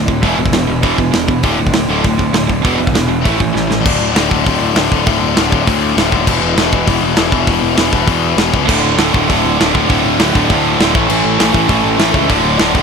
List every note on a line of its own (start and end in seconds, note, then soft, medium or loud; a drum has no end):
0.00 0.21 D1 loud
0.00 0.22 D2 medium
0.00 0.22 A2 medium
0.00 0.23 D3 medium
0.07 0.21 D2 medium
0.07 0.21 A2 medium
0.07 kick medium
0.23 0.37 E1 loud
0.23 0.37 E2 medium
0.23 0.37 B2 loud
0.23 0.38 E3 loud
0.23 kick loud
0.23 open hi-hat medium
0.37 0.51 E1 medium
0.37 0.52 E2 medium
0.37 0.52 B2 medium
0.46 kick medium
0.52 0.67 E1 medium
0.52 0.67 E2 medium
0.52 0.67 B2 medium
0.52 snare loud
0.52 open hi-hat medium
0.68 0.82 E1 medium
0.68 0.82 E2 medium
0.68 0.82 B2 medium
0.83 0.97 E1 medium
0.83 0.96 E2 medium
0.83 0.96 B2 medium
0.83 0.98 E3 medium
0.83 kick loud
0.83 open hi-hat medium
0.98 1.12 E1 medium
0.98 1.12 E2 medium
0.98 1.12 B2 medium
0.98 kick medium
1.13 1.42 E1 medium
1.13 1.27 E2 medium
1.13 1.27 B2 medium
1.13 snare loud
1.13 open hi-hat medium
1.28 1.42 E2 medium
1.28 1.42 B2 medium
1.28 kick medium
1.43 1.57 D1 loud
1.43 1.57 D2 medium
1.43 1.57 A2 loud
1.43 1.58 D3 loud
1.43 kick loud
1.43 open hi-hat medium
1.58 1.72 D1 medium
1.58 1.72 D2 medium
1.58 1.72 A2 medium
1.67 kick medium
1.73 1.87 D1 medium
1.73 1.87 D2 medium
1.73 1.88 A2 medium
1.73 snare loud
1.73 open hi-hat medium
1.88 2.03 D1 medium
1.88 2.03 D2 medium
1.88 2.04 A2 medium
1.88 2.04 D3 loud
2.04 2.18 D1 loud
2.04 2.18 D2 medium
2.04 2.19 A2 medium
2.04 2.65 D3 medium
2.04 kick loud
2.04 open hi-hat medium
2.19 2.33 D1 loud
2.19 2.33 D2 medium
2.19 2.34 A2 medium
2.19 kick medium
2.33 2.62 D1 loud
2.33 2.48 D2 medium
2.33 2.48 A2 medium
2.33 snare loud
2.33 open hi-hat medium
2.49 2.63 D2 medium
2.49 2.63 A2 medium
2.49 kick medium
2.64 2.78 E1 loud
2.64 2.79 E2 loud
2.64 2.79 B2 loud
2.64 2.79 E3 loud
2.64 kick loud
2.64 open hi-hat medium
2.78 2.93 E1 medium
2.78 2.93 E2 medium
2.78 2.93 B2 medium
2.87 kick medium
2.94 3.08 E1 medium
2.94 3.06 E2 medium
2.94 3.07 B2 medium
2.94 snare loud
2.94 open hi-hat medium
3.07 3.23 E1 medium
3.07 3.21 E2 medium
3.07 3.21 B2 medium
3.21 3.37 A2 medium
3.21 3.36 E3 medium
3.21 3.38 A3 loud
3.21 open hi-hat medium
3.25 3.39 A1 medium
3.25 3.85 E3 loud
3.25 3.85 A3 loud
3.25 kick loud
3.37 3.53 A1 medium
3.37 3.52 A2 medium
3.37 3.51 E3 medium
3.37 kick medium
3.53 3.83 A1 medium
3.53 3.66 A2 medium
3.53 3.66 E3 medium
3.53 snare medium
3.67 3.79 A2 medium
3.67 3.80 E3 medium
3.67 snare medium
3.81 4.12 D2 loud
3.81 4.12 A2 loud
3.81 4.14 D3 loud
3.85 3.98 D1 loud
3.85 4.14 A2 loud
3.85 kick loud
3.85 crash loud
4.00 4.13 D1 medium
4.13 4.28 D1 medium
4.13 4.29 D2 loud
4.13 4.29 A2 loud
4.13 4.28 D3 loud
4.13 snare loud
4.13 open hi-hat medium
4.29 4.44 D1 medium
4.29 4.44 D2 medium
4.29 4.44 A2 medium
4.29 4.45 D3 medium
4.29 kick medium
4.45 4.59 D1 medium
4.45 4.73 D2 medium
4.45 4.74 A2 loud
4.45 4.74 D3 medium
4.45 kick loud
4.45 open hi-hat medium
4.61 4.74 D1 loud
4.74 4.88 D1 loud
4.74 4.91 D2 loud
4.74 4.90 A2 medium
4.74 4.90 D3 medium
4.74 snare loud
4.74 open hi-hat medium
4.91 5.04 D1 loud
4.91 5.05 D2 medium
4.91 5.06 A2 medium
4.91 5.06 D3 loud
4.91 kick medium
5.06 5.19 D1 loud
5.06 5.33 D2 loud
5.06 5.34 A2 loud
5.06 5.34 D3 loud
5.06 kick loud
5.06 open hi-hat medium
5.22 5.34 D1 medium
5.34 5.49 D1 medium
5.34 5.49 D2 medium
5.34 5.49 A2 medium
5.34 5.49 D3 loud
5.34 snare loud
5.34 open hi-hat medium
5.50 5.65 D1 loud
5.50 5.63 D2 medium
5.50 5.64 A2 medium
5.50 5.65 D3 loud
5.50 kick medium
5.64 5.94 D2 loud
5.64 5.92 D2 loud
5.64 5.94 A2 loud
5.64 5.95 D3 loud
5.64 kick loud
5.64 open hi-hat medium
5.95 6.10 D1 loud
5.95 6.11 D2 medium
5.95 6.11 A2 medium
5.95 6.10 D3 medium
5.95 snare loud
5.95 open hi-hat medium
6.11 6.25 D#1 medium
6.11 6.26 D2 medium
6.11 6.25 A2 medium
6.11 6.26 D3 loud
6.11 kick medium
6.26 6.40 E1 loud
6.26 6.57 E2 loud
6.26 6.57 B2 loud
6.26 6.58 E3 loud
6.26 kick loud
6.26 crash loud
6.41 6.54 E1 medium
6.57 6.69 E1 loud
6.57 6.71 E2 loud
6.57 6.71 B2 medium
6.57 6.70 E3 loud
6.57 snare loud
6.57 open hi-hat medium
6.71 6.85 E1 loud
6.71 6.83 E2 medium
6.71 6.85 B2 medium
6.71 6.85 E3 medium
6.71 kick medium
6.85 7.00 E1 loud
6.85 7.13 E2 medium
6.85 7.14 B2 loud
6.85 7.15 E3 loud
6.85 kick loud
6.85 open hi-hat medium
7.01 7.14 E1 loud
7.14 7.30 E2 medium
7.14 7.29 B2 medium
7.14 7.29 E3 loud
7.14 snare loud
7.14 open hi-hat medium
7.18 7.31 E1 loud
7.30 7.45 E1 loud
7.30 7.45 E2 medium
7.30 7.45 B2 medium
7.30 7.47 E3 loud
7.30 kick medium
7.46 7.60 E1 loud
7.46 7.73 E2 loud
7.46 7.73 B2 loud
7.46 7.75 E3 loud
7.46 kick loud
7.46 open hi-hat medium
7.62 7.75 E1 medium
7.74 7.90 E1 medium
7.74 7.91 E2 medium
7.74 7.90 B2 medium
7.74 7.90 E3 loud
7.74 snare loud
7.74 open hi-hat medium
7.91 8.05 E1 loud
7.91 8.04 E2 medium
7.91 8.05 B2 medium
7.91 8.06 E3 medium
7.91 kick medium
8.05 8.36 E2 medium
8.05 8.32 E2 medium
8.05 8.36 B2 loud
8.05 8.37 E3 loud
8.05 kick loud
8.05 open hi-hat medium
8.37 8.50 E1 loud
8.37 8.50 E2 medium
8.37 8.50 B2 loud
8.37 8.50 E3 medium
8.37 snare loud
8.37 open hi-hat medium
8.51 8.66 C#2 medium
8.51 8.66 E2 medium
8.51 8.66 B2 medium
8.51 8.66 E3 medium
8.51 kick medium
8.66 8.81 D1 loud
8.66 8.96 D2 loud
8.66 8.97 A2 loud
8.66 8.98 D3 loud
8.66 kick loud
8.66 crash loud
8.82 8.95 D1 medium
8.97 9.10 D1 medium
8.97 9.13 D2 medium
8.97 9.12 A2 medium
8.97 9.12 D3 loud
8.97 snare loud
8.97 open hi-hat medium
9.13 9.26 D1 medium
9.13 9.27 D2 medium
9.13 9.27 A2 medium
9.13 9.28 D3 medium
9.13 kick loud
9.28 9.42 D1 medium
9.28 9.56 D2 medium
9.28 9.58 A2 medium
9.28 9.59 D3 loud
9.28 kick loud
9.28 open hi-hat medium
9.44 9.57 D1 medium
9.57 9.72 D1 medium
9.57 9.72 D2 medium
9.57 9.72 A2 medium
9.57 9.71 D3 loud
9.57 snare loud
9.57 open hi-hat medium
9.73 9.87 D1 medium
9.73 9.87 D2 medium
9.73 9.87 A2 medium
9.73 9.88 D3 medium
9.73 kick medium
9.88 10.02 D1 loud
9.88 10.17 D2 loud
9.88 10.18 A2 loud
9.88 10.18 D3 loud
9.88 kick loud
9.88 open hi-hat medium
10.04 10.16 D1 medium
10.18 10.31 D1 loud
10.18 10.33 D2 medium
10.18 10.33 A2 loud
10.18 10.32 D3 loud
10.18 snare loud
10.18 open hi-hat medium
10.33 10.47 D1 loud
10.33 10.48 D2 medium
10.33 10.48 A2 medium
10.33 10.49 D3 loud
10.33 kick loud
10.49 10.78 D2 loud
10.49 10.75 D2 medium
10.49 10.79 A2 loud
10.49 10.79 D3 loud
10.49 kick loud
10.49 open hi-hat medium
10.80 10.92 D1 medium
10.80 10.93 D2 medium
10.80 10.93 A2 loud
10.80 10.94 D3 loud
10.80 snare loud
10.80 open hi-hat medium
10.94 11.07 A1 medium
10.94 11.09 A2 loud
10.94 11.08 E3 loud
10.94 11.08 A3 loud
10.94 kick loud
11.08 11.22 A1 loud
11.08 11.39 A2 medium
11.08 11.38 E3 loud
11.08 11.38 A3 loud
11.08 crash loud
11.25 11.37 A1 medium
11.38 11.52 A1 medium
11.38 11.51 A2 medium
11.38 11.52 E3 loud
11.38 11.53 A3 loud
11.38 snare loud
11.38 open hi-hat medium
11.53 11.67 A1 loud
11.53 11.67 A2 medium
11.53 11.67 E3 medium
11.53 11.67 A3 medium
11.53 kick medium
11.68 11.82 A1 loud
11.68 11.97 A2 loud
11.68 11.96 E3 medium
11.68 11.96 A3 loud
11.68 kick loud
11.68 open hi-hat medium
11.84 11.97 A1 medium
11.97 12.12 A1 loud
11.97 12.11 A2 medium
11.97 12.10 E3 medium
11.97 12.12 A3 loud
11.97 snare loud
11.97 open hi-hat medium
12.12 12.27 C#2 loud
12.12 12.27 A2 medium
12.12 12.27 E3 medium
12.12 12.29 A3 loud
12.12 kick medium
12.27 12.42 D1 loud
12.27 12.57 D2 loud
12.27 12.58 A2 loud
12.27 12.58 D3 loud
12.27 kick loud
12.27 open hi-hat medium
12.43 12.57 D1 medium
12.58 12.72 D1 medium
12.58 12.74 D2 medium
12.58 12.73 A2 medium
12.58 12.73 D3 loud
12.58 snare loud
12.58 open hi-hat medium
12.74 12.83 D1 medium
12.74 12.83 D2 medium
12.74 12.83 A2 medium
12.74 12.83 D3 medium
12.74 kick loud